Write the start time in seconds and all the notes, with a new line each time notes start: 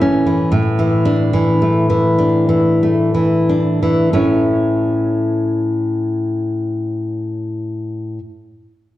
Already playing: A2 E3 A3
0.01 C#4
0.26 E3
0.52 A2
0.79 E3
1.05 D4
1.33 E3
1.62 A3
1.90 E3
2.18 D4
2.49 E3
2.83 A3
3.14 E3
3.49 D4
3.83 E3
4.13 A2 C#4 E4 A4 C#5